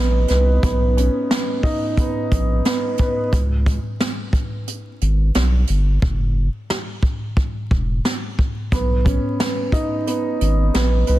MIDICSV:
0, 0, Header, 1, 4, 480
1, 0, Start_track
1, 0, Tempo, 674157
1, 448, Time_signature, 4, 2, 24, 8
1, 7967, End_track
2, 0, Start_track
2, 0, Title_t, "Upright piano"
2, 0, Program_c, 0, 0
2, 0, Control_c, 0, 64, 127
2, 0, Note_on_c, 0, 59, 90
2, 0, Note_on_c, 0, 61, 82
2, 0, Note_on_c, 0, 63, 92
2, 201, Note_on_c, 0, 71, 81
2, 438, Note_off_c, 0, 59, 0
2, 447, Note_off_c, 0, 63, 0
2, 449, Note_on_c, 0, 59, 93
2, 692, Note_off_c, 0, 61, 0
2, 692, Note_on_c, 0, 61, 78
2, 927, Note_off_c, 0, 59, 0
2, 938, Note_on_c, 0, 59, 67
2, 1162, Note_on_c, 0, 63, 98
2, 1402, Note_off_c, 0, 59, 0
2, 1405, Note_off_c, 0, 71, 0
2, 1413, Note_on_c, 0, 59, 73
2, 1881, Note_off_c, 0, 59, 0
2, 1890, Note_off_c, 0, 61, 0
2, 1891, Note_on_c, 0, 59, 93
2, 2134, Note_on_c, 0, 71, 84
2, 2365, Note_off_c, 0, 63, 0
2, 2370, Note_off_c, 0, 59, 0
2, 2371, Note_off_c, 0, 71, 0
2, 2377, Control_c, 0, 64, 0
2, 2487, Control_c, 0, 64, 127
2, 4297, Control_c, 0, 64, 0
2, 6210, Note_on_c, 0, 59, 91
2, 6353, Control_c, 0, 64, 127
2, 6442, Note_on_c, 0, 61, 82
2, 6681, Note_off_c, 0, 59, 0
2, 6692, Note_on_c, 0, 59, 73
2, 6927, Note_on_c, 0, 63, 92
2, 7158, Note_off_c, 0, 59, 0
2, 7169, Note_on_c, 0, 59, 80
2, 7637, Note_off_c, 0, 59, 0
2, 7645, Note_off_c, 0, 61, 0
2, 7647, Note_on_c, 0, 59, 88
2, 7883, Note_on_c, 0, 71, 82
2, 7967, Note_off_c, 0, 59, 0
2, 7967, Note_off_c, 0, 63, 0
2, 7967, Note_off_c, 0, 71, 0
2, 7967, End_track
3, 0, Start_track
3, 0, Title_t, "Sub bass"
3, 0, Program_c, 1, 38
3, 0, Note_on_c, 1, 34, 96
3, 181, Note_off_c, 1, 34, 0
3, 213, Note_on_c, 1, 36, 101
3, 421, Note_off_c, 1, 36, 0
3, 451, Note_on_c, 1, 35, 106
3, 780, Note_off_c, 1, 35, 0
3, 1651, Note_on_c, 1, 34, 86
3, 1860, Note_off_c, 1, 34, 0
3, 2371, Note_on_c, 1, 37, 113
3, 2700, Note_off_c, 1, 37, 0
3, 3572, Note_on_c, 1, 32, 90
3, 3780, Note_off_c, 1, 32, 0
3, 3812, Note_on_c, 1, 35, 97
3, 4020, Note_off_c, 1, 35, 0
3, 4052, Note_on_c, 1, 31, 102
3, 4260, Note_off_c, 1, 31, 0
3, 4290, Note_on_c, 1, 30, 108
3, 4620, Note_off_c, 1, 30, 0
3, 5491, Note_on_c, 1, 28, 89
3, 5700, Note_off_c, 1, 28, 0
3, 6211, Note_on_c, 1, 35, 102
3, 6540, Note_off_c, 1, 35, 0
3, 7413, Note_on_c, 1, 32, 89
3, 7621, Note_off_c, 1, 32, 0
3, 7652, Note_on_c, 1, 34, 95
3, 7860, Note_off_c, 1, 34, 0
3, 7893, Note_on_c, 1, 36, 100
3, 7967, Note_off_c, 1, 36, 0
3, 7967, End_track
4, 0, Start_track
4, 0, Title_t, "Drums"
4, 199, Note_on_c, 9, 42, 74
4, 212, Note_on_c, 9, 38, 37
4, 270, Note_off_c, 9, 42, 0
4, 283, Note_off_c, 9, 38, 0
4, 449, Note_on_c, 9, 36, 119
4, 451, Note_on_c, 9, 42, 98
4, 520, Note_off_c, 9, 36, 0
4, 523, Note_off_c, 9, 42, 0
4, 695, Note_on_c, 9, 42, 77
4, 766, Note_off_c, 9, 42, 0
4, 931, Note_on_c, 9, 38, 122
4, 936, Note_on_c, 9, 42, 87
4, 1002, Note_off_c, 9, 38, 0
4, 1007, Note_off_c, 9, 42, 0
4, 1163, Note_on_c, 9, 36, 83
4, 1171, Note_on_c, 9, 46, 50
4, 1234, Note_off_c, 9, 36, 0
4, 1242, Note_off_c, 9, 46, 0
4, 1406, Note_on_c, 9, 36, 96
4, 1410, Note_on_c, 9, 42, 88
4, 1477, Note_off_c, 9, 36, 0
4, 1481, Note_off_c, 9, 42, 0
4, 1650, Note_on_c, 9, 36, 95
4, 1650, Note_on_c, 9, 42, 79
4, 1721, Note_off_c, 9, 36, 0
4, 1721, Note_off_c, 9, 42, 0
4, 1886, Note_on_c, 9, 42, 87
4, 1891, Note_on_c, 9, 38, 115
4, 1958, Note_off_c, 9, 42, 0
4, 1962, Note_off_c, 9, 38, 0
4, 2118, Note_on_c, 9, 42, 74
4, 2132, Note_on_c, 9, 36, 93
4, 2190, Note_off_c, 9, 42, 0
4, 2203, Note_off_c, 9, 36, 0
4, 2369, Note_on_c, 9, 36, 118
4, 2371, Note_on_c, 9, 42, 100
4, 2440, Note_off_c, 9, 36, 0
4, 2442, Note_off_c, 9, 42, 0
4, 2608, Note_on_c, 9, 36, 104
4, 2614, Note_on_c, 9, 42, 75
4, 2680, Note_off_c, 9, 36, 0
4, 2685, Note_off_c, 9, 42, 0
4, 2851, Note_on_c, 9, 38, 122
4, 2855, Note_on_c, 9, 42, 85
4, 2922, Note_off_c, 9, 38, 0
4, 2926, Note_off_c, 9, 42, 0
4, 3082, Note_on_c, 9, 36, 87
4, 3090, Note_on_c, 9, 42, 72
4, 3153, Note_off_c, 9, 36, 0
4, 3161, Note_off_c, 9, 42, 0
4, 3329, Note_on_c, 9, 42, 89
4, 3400, Note_off_c, 9, 42, 0
4, 3570, Note_on_c, 9, 42, 80
4, 3641, Note_off_c, 9, 42, 0
4, 3806, Note_on_c, 9, 42, 90
4, 3811, Note_on_c, 9, 38, 112
4, 3877, Note_off_c, 9, 42, 0
4, 3882, Note_off_c, 9, 38, 0
4, 4038, Note_on_c, 9, 42, 73
4, 4109, Note_off_c, 9, 42, 0
4, 4289, Note_on_c, 9, 36, 124
4, 4360, Note_off_c, 9, 36, 0
4, 4771, Note_on_c, 9, 38, 120
4, 4842, Note_off_c, 9, 38, 0
4, 5002, Note_on_c, 9, 36, 85
4, 5074, Note_off_c, 9, 36, 0
4, 5246, Note_on_c, 9, 36, 92
4, 5317, Note_off_c, 9, 36, 0
4, 5490, Note_on_c, 9, 36, 92
4, 5561, Note_off_c, 9, 36, 0
4, 5732, Note_on_c, 9, 38, 119
4, 5803, Note_off_c, 9, 38, 0
4, 5972, Note_on_c, 9, 36, 89
4, 6043, Note_off_c, 9, 36, 0
4, 6209, Note_on_c, 9, 36, 120
4, 6212, Note_on_c, 9, 42, 99
4, 6280, Note_off_c, 9, 36, 0
4, 6283, Note_off_c, 9, 42, 0
4, 6449, Note_on_c, 9, 36, 99
4, 6455, Note_on_c, 9, 42, 74
4, 6520, Note_off_c, 9, 36, 0
4, 6526, Note_off_c, 9, 42, 0
4, 6692, Note_on_c, 9, 38, 124
4, 6697, Note_on_c, 9, 42, 89
4, 6764, Note_off_c, 9, 38, 0
4, 6768, Note_off_c, 9, 42, 0
4, 6923, Note_on_c, 9, 36, 85
4, 6932, Note_on_c, 9, 42, 72
4, 6994, Note_off_c, 9, 36, 0
4, 7003, Note_off_c, 9, 42, 0
4, 7171, Note_on_c, 9, 42, 86
4, 7242, Note_off_c, 9, 42, 0
4, 7411, Note_on_c, 9, 42, 82
4, 7483, Note_off_c, 9, 42, 0
4, 7648, Note_on_c, 9, 42, 91
4, 7653, Note_on_c, 9, 38, 118
4, 7719, Note_off_c, 9, 42, 0
4, 7724, Note_off_c, 9, 38, 0
4, 7880, Note_on_c, 9, 42, 74
4, 7951, Note_off_c, 9, 42, 0
4, 7967, End_track
0, 0, End_of_file